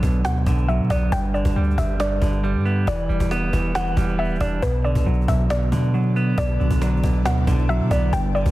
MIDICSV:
0, 0, Header, 1, 6, 480
1, 0, Start_track
1, 0, Key_signature, 2, "minor"
1, 0, Tempo, 437956
1, 1230, Time_signature, 4, 2, 24, 8
1, 9327, End_track
2, 0, Start_track
2, 0, Title_t, "Synth pluck"
2, 0, Program_c, 0, 84
2, 0, Note_on_c, 0, 74, 100
2, 227, Note_off_c, 0, 74, 0
2, 270, Note_on_c, 0, 78, 83
2, 721, Note_off_c, 0, 78, 0
2, 750, Note_on_c, 0, 76, 83
2, 974, Note_off_c, 0, 76, 0
2, 990, Note_on_c, 0, 74, 73
2, 1215, Note_off_c, 0, 74, 0
2, 1229, Note_on_c, 0, 79, 91
2, 1454, Note_off_c, 0, 79, 0
2, 1470, Note_on_c, 0, 74, 75
2, 1921, Note_off_c, 0, 74, 0
2, 1949, Note_on_c, 0, 76, 82
2, 2174, Note_off_c, 0, 76, 0
2, 2190, Note_on_c, 0, 74, 89
2, 3106, Note_off_c, 0, 74, 0
2, 3153, Note_on_c, 0, 74, 100
2, 4067, Note_off_c, 0, 74, 0
2, 4111, Note_on_c, 0, 78, 86
2, 4561, Note_off_c, 0, 78, 0
2, 4590, Note_on_c, 0, 76, 85
2, 4815, Note_off_c, 0, 76, 0
2, 4830, Note_on_c, 0, 74, 75
2, 5054, Note_off_c, 0, 74, 0
2, 5068, Note_on_c, 0, 71, 91
2, 5293, Note_off_c, 0, 71, 0
2, 5310, Note_on_c, 0, 74, 73
2, 5761, Note_off_c, 0, 74, 0
2, 5789, Note_on_c, 0, 76, 87
2, 6014, Note_off_c, 0, 76, 0
2, 6032, Note_on_c, 0, 74, 92
2, 6947, Note_off_c, 0, 74, 0
2, 6992, Note_on_c, 0, 74, 99
2, 7907, Note_off_c, 0, 74, 0
2, 7950, Note_on_c, 0, 78, 80
2, 8401, Note_off_c, 0, 78, 0
2, 8429, Note_on_c, 0, 76, 86
2, 8654, Note_off_c, 0, 76, 0
2, 8671, Note_on_c, 0, 74, 72
2, 8895, Note_off_c, 0, 74, 0
2, 8909, Note_on_c, 0, 79, 87
2, 9134, Note_off_c, 0, 79, 0
2, 9150, Note_on_c, 0, 74, 78
2, 9327, Note_off_c, 0, 74, 0
2, 9327, End_track
3, 0, Start_track
3, 0, Title_t, "Ambient pad"
3, 0, Program_c, 1, 92
3, 5069, Note_on_c, 1, 50, 86
3, 5069, Note_on_c, 1, 59, 79
3, 5069, Note_on_c, 1, 66, 78
3, 5070, Note_on_c, 1, 74, 95
3, 6970, Note_off_c, 1, 66, 0
3, 6989, Note_on_c, 1, 64, 75
3, 8871, Note_off_c, 1, 59, 0
3, 8890, Note_off_c, 1, 64, 0
3, 8909, Note_on_c, 1, 59, 77
3, 8909, Note_on_c, 1, 67, 79
3, 9327, Note_off_c, 1, 50, 0
3, 9327, Note_off_c, 1, 59, 0
3, 9327, Note_off_c, 1, 67, 0
3, 9327, Note_off_c, 1, 74, 0
3, 9327, End_track
4, 0, Start_track
4, 0, Title_t, "Clean electric guitar"
4, 0, Program_c, 2, 27
4, 0, Note_on_c, 2, 50, 78
4, 0, Note_on_c, 2, 54, 78
4, 0, Note_on_c, 2, 59, 88
4, 35, Note_on_c, 2, 47, 75
4, 258, Note_off_c, 2, 47, 0
4, 271, Note_on_c, 2, 47, 86
4, 272, Note_off_c, 2, 59, 0
4, 497, Note_off_c, 2, 50, 0
4, 510, Note_on_c, 2, 50, 86
4, 737, Note_off_c, 2, 54, 0
4, 750, Note_on_c, 2, 54, 90
4, 991, Note_on_c, 2, 59, 83
4, 1227, Note_off_c, 2, 47, 0
4, 1230, Note_off_c, 2, 50, 0
4, 1230, Note_off_c, 2, 54, 0
4, 1230, Note_off_c, 2, 59, 0
4, 1231, Note_on_c, 2, 43, 90
4, 1469, Note_on_c, 2, 50, 80
4, 1713, Note_on_c, 2, 55, 83
4, 1938, Note_off_c, 2, 43, 0
4, 1951, Note_on_c, 2, 43, 74
4, 2174, Note_off_c, 2, 43, 0
4, 2188, Note_on_c, 2, 43, 97
4, 2414, Note_off_c, 2, 50, 0
4, 2427, Note_on_c, 2, 50, 82
4, 2657, Note_off_c, 2, 55, 0
4, 2670, Note_on_c, 2, 55, 90
4, 2909, Note_on_c, 2, 59, 86
4, 3148, Note_off_c, 2, 50, 0
4, 3149, Note_off_c, 2, 43, 0
4, 3149, Note_off_c, 2, 59, 0
4, 3150, Note_off_c, 2, 55, 0
4, 3152, Note_on_c, 2, 52, 97
4, 3389, Note_on_c, 2, 55, 79
4, 3631, Note_on_c, 2, 59, 95
4, 3856, Note_off_c, 2, 52, 0
4, 3869, Note_on_c, 2, 52, 80
4, 4100, Note_off_c, 2, 52, 0
4, 4337, Note_off_c, 2, 55, 0
4, 4350, Note_on_c, 2, 55, 84
4, 4575, Note_off_c, 2, 59, 0
4, 4588, Note_on_c, 2, 59, 89
4, 4827, Note_off_c, 2, 59, 0
4, 4831, Note_on_c, 2, 62, 87
4, 5070, Note_off_c, 2, 55, 0
4, 5070, Note_off_c, 2, 62, 0
4, 5071, Note_on_c, 2, 47, 93
4, 5309, Note_on_c, 2, 50, 79
4, 5548, Note_on_c, 2, 54, 86
4, 5778, Note_off_c, 2, 47, 0
4, 5791, Note_on_c, 2, 47, 79
4, 6016, Note_off_c, 2, 47, 0
4, 6029, Note_on_c, 2, 47, 95
4, 6256, Note_off_c, 2, 50, 0
4, 6269, Note_on_c, 2, 50, 83
4, 6497, Note_off_c, 2, 54, 0
4, 6510, Note_on_c, 2, 54, 92
4, 6754, Note_on_c, 2, 59, 84
4, 6975, Note_off_c, 2, 47, 0
4, 6988, Note_on_c, 2, 47, 95
4, 7218, Note_off_c, 2, 50, 0
4, 7232, Note_on_c, 2, 50, 76
4, 7455, Note_off_c, 2, 54, 0
4, 7468, Note_on_c, 2, 54, 78
4, 7701, Note_off_c, 2, 47, 0
4, 7714, Note_on_c, 2, 47, 78
4, 7938, Note_off_c, 2, 47, 0
4, 7951, Note_on_c, 2, 47, 87
4, 7952, Note_off_c, 2, 59, 0
4, 8175, Note_off_c, 2, 50, 0
4, 8189, Note_on_c, 2, 50, 83
4, 8418, Note_off_c, 2, 54, 0
4, 8431, Note_on_c, 2, 54, 91
4, 8671, Note_on_c, 2, 59, 85
4, 8907, Note_off_c, 2, 47, 0
4, 8909, Note_off_c, 2, 50, 0
4, 8910, Note_off_c, 2, 54, 0
4, 8910, Note_off_c, 2, 59, 0
4, 8911, Note_on_c, 2, 43, 95
4, 9149, Note_on_c, 2, 50, 81
4, 9327, Note_off_c, 2, 43, 0
4, 9327, Note_off_c, 2, 50, 0
4, 9327, End_track
5, 0, Start_track
5, 0, Title_t, "808-style bass"
5, 0, Program_c, 3, 38
5, 30, Note_on_c, 3, 35, 104
5, 270, Note_on_c, 3, 38, 102
5, 286, Note_off_c, 3, 35, 0
5, 498, Note_off_c, 3, 38, 0
5, 509, Note_on_c, 3, 35, 110
5, 870, Note_on_c, 3, 47, 98
5, 886, Note_off_c, 3, 35, 0
5, 984, Note_off_c, 3, 47, 0
5, 989, Note_on_c, 3, 35, 107
5, 1220, Note_off_c, 3, 35, 0
5, 1229, Note_on_c, 3, 31, 115
5, 1575, Note_off_c, 3, 31, 0
5, 1590, Note_on_c, 3, 31, 100
5, 1705, Note_off_c, 3, 31, 0
5, 1710, Note_on_c, 3, 38, 106
5, 1940, Note_off_c, 3, 38, 0
5, 1950, Note_on_c, 3, 31, 102
5, 2411, Note_off_c, 3, 31, 0
5, 2429, Note_on_c, 3, 31, 110
5, 2790, Note_on_c, 3, 43, 98
5, 2806, Note_off_c, 3, 31, 0
5, 3132, Note_off_c, 3, 43, 0
5, 3149, Note_on_c, 3, 28, 115
5, 3380, Note_off_c, 3, 28, 0
5, 3390, Note_on_c, 3, 28, 105
5, 3505, Note_off_c, 3, 28, 0
5, 3509, Note_on_c, 3, 28, 102
5, 3855, Note_off_c, 3, 28, 0
5, 3870, Note_on_c, 3, 28, 102
5, 4331, Note_off_c, 3, 28, 0
5, 4350, Note_on_c, 3, 28, 107
5, 4710, Note_on_c, 3, 26, 100
5, 4726, Note_off_c, 3, 28, 0
5, 4824, Note_off_c, 3, 26, 0
5, 4828, Note_on_c, 3, 28, 106
5, 5059, Note_off_c, 3, 28, 0
5, 5069, Note_on_c, 3, 35, 116
5, 5415, Note_off_c, 3, 35, 0
5, 5429, Note_on_c, 3, 35, 101
5, 5545, Note_off_c, 3, 35, 0
5, 5549, Note_on_c, 3, 35, 107
5, 5780, Note_off_c, 3, 35, 0
5, 5790, Note_on_c, 3, 35, 103
5, 6251, Note_off_c, 3, 35, 0
5, 6269, Note_on_c, 3, 47, 103
5, 6961, Note_off_c, 3, 47, 0
5, 6989, Note_on_c, 3, 35, 114
5, 7220, Note_off_c, 3, 35, 0
5, 7229, Note_on_c, 3, 35, 97
5, 7345, Note_off_c, 3, 35, 0
5, 7349, Note_on_c, 3, 35, 102
5, 7695, Note_off_c, 3, 35, 0
5, 7710, Note_on_c, 3, 35, 107
5, 7950, Note_on_c, 3, 38, 105
5, 7966, Note_off_c, 3, 35, 0
5, 8178, Note_off_c, 3, 38, 0
5, 8190, Note_on_c, 3, 35, 107
5, 8549, Note_on_c, 3, 47, 98
5, 8566, Note_off_c, 3, 35, 0
5, 8663, Note_off_c, 3, 47, 0
5, 8668, Note_on_c, 3, 35, 106
5, 8899, Note_off_c, 3, 35, 0
5, 8909, Note_on_c, 3, 31, 110
5, 9255, Note_off_c, 3, 31, 0
5, 9270, Note_on_c, 3, 31, 100
5, 9327, Note_off_c, 3, 31, 0
5, 9327, End_track
6, 0, Start_track
6, 0, Title_t, "Cajon"
6, 30, Note_on_c, 9, 36, 100
6, 140, Note_off_c, 9, 36, 0
6, 149, Note_on_c, 9, 38, 31
6, 259, Note_off_c, 9, 38, 0
6, 270, Note_on_c, 9, 38, 112
6, 380, Note_off_c, 9, 38, 0
6, 395, Note_on_c, 9, 38, 48
6, 505, Note_off_c, 9, 38, 0
6, 509, Note_on_c, 9, 36, 102
6, 619, Note_off_c, 9, 36, 0
6, 633, Note_on_c, 9, 38, 31
6, 743, Note_off_c, 9, 38, 0
6, 748, Note_on_c, 9, 38, 38
6, 858, Note_off_c, 9, 38, 0
6, 989, Note_on_c, 9, 36, 97
6, 1098, Note_off_c, 9, 36, 0
6, 1229, Note_on_c, 9, 36, 113
6, 1339, Note_off_c, 9, 36, 0
6, 1349, Note_on_c, 9, 38, 29
6, 1459, Note_off_c, 9, 38, 0
6, 1476, Note_on_c, 9, 38, 47
6, 1585, Note_off_c, 9, 38, 0
6, 1589, Note_on_c, 9, 36, 95
6, 1699, Note_off_c, 9, 36, 0
6, 1709, Note_on_c, 9, 38, 23
6, 1789, Note_off_c, 9, 38, 0
6, 1789, Note_on_c, 9, 38, 32
6, 1869, Note_off_c, 9, 38, 0
6, 1869, Note_on_c, 9, 38, 41
6, 1950, Note_on_c, 9, 36, 102
6, 1979, Note_off_c, 9, 38, 0
6, 2060, Note_off_c, 9, 36, 0
6, 2069, Note_on_c, 9, 38, 30
6, 2179, Note_off_c, 9, 38, 0
6, 2190, Note_on_c, 9, 38, 112
6, 2299, Note_off_c, 9, 38, 0
6, 2315, Note_on_c, 9, 38, 48
6, 2424, Note_off_c, 9, 38, 0
6, 2429, Note_on_c, 9, 36, 105
6, 2539, Note_off_c, 9, 36, 0
6, 2553, Note_on_c, 9, 38, 32
6, 2662, Note_off_c, 9, 38, 0
6, 2667, Note_on_c, 9, 38, 38
6, 2777, Note_off_c, 9, 38, 0
6, 2909, Note_on_c, 9, 38, 44
6, 3018, Note_off_c, 9, 38, 0
6, 3149, Note_on_c, 9, 36, 114
6, 3259, Note_off_c, 9, 36, 0
6, 3269, Note_on_c, 9, 38, 30
6, 3378, Note_off_c, 9, 38, 0
6, 3395, Note_on_c, 9, 38, 46
6, 3505, Note_off_c, 9, 38, 0
6, 3509, Note_on_c, 9, 36, 95
6, 3619, Note_off_c, 9, 36, 0
6, 3629, Note_on_c, 9, 38, 96
6, 3738, Note_off_c, 9, 38, 0
6, 3870, Note_on_c, 9, 36, 98
6, 3980, Note_off_c, 9, 36, 0
6, 3990, Note_on_c, 9, 38, 30
6, 4099, Note_off_c, 9, 38, 0
6, 4110, Note_on_c, 9, 38, 114
6, 4220, Note_off_c, 9, 38, 0
6, 4235, Note_on_c, 9, 38, 48
6, 4345, Note_off_c, 9, 38, 0
6, 4349, Note_on_c, 9, 36, 106
6, 4459, Note_off_c, 9, 36, 0
6, 4473, Note_on_c, 9, 38, 31
6, 4583, Note_off_c, 9, 38, 0
6, 4590, Note_on_c, 9, 38, 24
6, 4649, Note_off_c, 9, 38, 0
6, 4649, Note_on_c, 9, 38, 30
6, 4710, Note_off_c, 9, 38, 0
6, 4710, Note_on_c, 9, 38, 36
6, 4769, Note_off_c, 9, 38, 0
6, 4769, Note_on_c, 9, 38, 42
6, 4828, Note_on_c, 9, 36, 100
6, 4879, Note_off_c, 9, 38, 0
6, 4938, Note_off_c, 9, 36, 0
6, 5069, Note_on_c, 9, 36, 114
6, 5179, Note_off_c, 9, 36, 0
6, 5189, Note_on_c, 9, 38, 30
6, 5299, Note_off_c, 9, 38, 0
6, 5316, Note_on_c, 9, 38, 48
6, 5426, Note_off_c, 9, 38, 0
6, 5429, Note_on_c, 9, 36, 93
6, 5539, Note_off_c, 9, 36, 0
6, 5550, Note_on_c, 9, 38, 24
6, 5630, Note_off_c, 9, 38, 0
6, 5630, Note_on_c, 9, 38, 32
6, 5709, Note_off_c, 9, 38, 0
6, 5709, Note_on_c, 9, 38, 38
6, 5790, Note_on_c, 9, 36, 101
6, 5819, Note_off_c, 9, 38, 0
6, 5900, Note_off_c, 9, 36, 0
6, 5910, Note_on_c, 9, 38, 30
6, 6019, Note_off_c, 9, 38, 0
6, 6030, Note_on_c, 9, 38, 116
6, 6140, Note_off_c, 9, 38, 0
6, 6155, Note_on_c, 9, 38, 46
6, 6265, Note_off_c, 9, 38, 0
6, 6269, Note_on_c, 9, 36, 100
6, 6379, Note_off_c, 9, 36, 0
6, 6394, Note_on_c, 9, 38, 32
6, 6503, Note_off_c, 9, 38, 0
6, 6508, Note_on_c, 9, 38, 37
6, 6618, Note_off_c, 9, 38, 0
6, 6750, Note_on_c, 9, 38, 43
6, 6859, Note_off_c, 9, 38, 0
6, 6989, Note_on_c, 9, 36, 113
6, 7099, Note_off_c, 9, 36, 0
6, 7109, Note_on_c, 9, 38, 30
6, 7219, Note_off_c, 9, 38, 0
6, 7236, Note_on_c, 9, 38, 46
6, 7346, Note_off_c, 9, 38, 0
6, 7349, Note_on_c, 9, 36, 92
6, 7459, Note_off_c, 9, 36, 0
6, 7470, Note_on_c, 9, 38, 96
6, 7550, Note_off_c, 9, 38, 0
6, 7550, Note_on_c, 9, 38, 32
6, 7630, Note_off_c, 9, 38, 0
6, 7630, Note_on_c, 9, 38, 40
6, 7710, Note_on_c, 9, 36, 102
6, 7740, Note_off_c, 9, 38, 0
6, 7820, Note_off_c, 9, 36, 0
6, 7830, Note_on_c, 9, 38, 30
6, 7940, Note_off_c, 9, 38, 0
6, 7951, Note_on_c, 9, 38, 111
6, 8060, Note_off_c, 9, 38, 0
6, 8076, Note_on_c, 9, 38, 48
6, 8185, Note_off_c, 9, 38, 0
6, 8190, Note_on_c, 9, 36, 106
6, 8299, Note_off_c, 9, 36, 0
6, 8313, Note_on_c, 9, 38, 33
6, 8423, Note_off_c, 9, 38, 0
6, 8428, Note_on_c, 9, 38, 39
6, 8537, Note_off_c, 9, 38, 0
6, 8668, Note_on_c, 9, 36, 99
6, 8778, Note_off_c, 9, 36, 0
6, 8909, Note_on_c, 9, 36, 112
6, 9019, Note_off_c, 9, 36, 0
6, 9029, Note_on_c, 9, 38, 30
6, 9139, Note_off_c, 9, 38, 0
6, 9156, Note_on_c, 9, 38, 46
6, 9266, Note_off_c, 9, 38, 0
6, 9270, Note_on_c, 9, 36, 91
6, 9327, Note_off_c, 9, 36, 0
6, 9327, End_track
0, 0, End_of_file